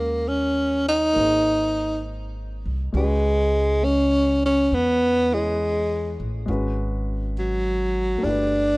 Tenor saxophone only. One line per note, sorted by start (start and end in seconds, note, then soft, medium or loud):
0.00 0.30 A#3 medium
0.28 0.88 C#4 medium
0.88 2.01 D#4 medium
2.96 3.86 G#3 medium
3.84 4.44 C#4 medium
4.46 4.76 C#4 medium
4.74 5.35 B3 medium
5.34 6.20 G#3 medium
7.39 8.26 F#3 medium
8.24 8.77 D4 medium